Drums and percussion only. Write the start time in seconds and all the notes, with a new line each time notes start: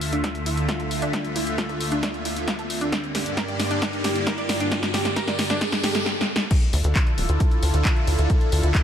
0.01 open hi-hat
0.13 closed hi-hat
0.24 kick, snare, closed hi-hat
0.35 closed hi-hat
0.46 open hi-hat
0.57 closed hi-hat
0.69 kick, snare, closed hi-hat
0.80 closed hi-hat
0.91 open hi-hat
1.02 closed hi-hat
1.13 kick, snare, closed hi-hat
1.25 closed hi-hat
1.36 open hi-hat
1.47 closed hi-hat
1.58 kick, snare, closed hi-hat
1.69 closed hi-hat
1.81 open hi-hat
1.92 closed hi-hat
2.03 kick, snare, closed hi-hat
2.14 closed hi-hat
2.25 open hi-hat
2.36 closed hi-hat
2.48 kick, snare, closed hi-hat
2.59 closed hi-hat
2.70 open hi-hat
2.81 closed hi-hat
2.92 kick, snare, closed hi-hat
3.04 closed hi-hat
3.15 snare, open hi-hat
3.26 closed hi-hat
3.37 kick, snare, closed hi-hat
3.48 closed hi-hat
3.60 snare, open hi-hat
3.71 closed hi-hat
3.82 kick, snare, closed hi-hat
3.93 closed hi-hat
4.04 snare, open hi-hat
4.16 closed hi-hat
4.27 kick, snare, closed hi-hat
4.38 closed hi-hat
4.49 snare, open hi-hat
4.60 closed hi-hat
4.72 kick, snare, closed hi-hat
4.83 snare, closed hi-hat
4.94 snare, open hi-hat
5.05 snare, closed hi-hat
5.16 kick, snare, closed hi-hat
5.28 snare, closed hi-hat
5.39 snare, open hi-hat
5.50 snare, closed hi-hat
5.61 kick, snare, closed hi-hat
5.72 snare, closed hi-hat
5.84 snare, open hi-hat
5.95 snare, closed hi-hat
6.06 snare
6.21 snare
6.36 snare
6.51 kick, closed hi-hat, crash
6.62 closed hi-hat
6.73 open hi-hat
6.84 closed hi-hat
6.96 kick, clap, closed hi-hat
7.07 closed hi-hat
7.18 open hi-hat
7.29 closed hi-hat
7.40 kick, closed hi-hat
7.51 closed hi-hat
7.63 open hi-hat
7.74 closed hi-hat
7.85 kick, clap, closed hi-hat
7.96 closed hi-hat
8.07 open hi-hat
8.19 closed hi-hat
8.30 kick, closed hi-hat
8.41 closed hi-hat
8.52 open hi-hat
8.63 closed hi-hat
8.75 kick, clap, closed hi-hat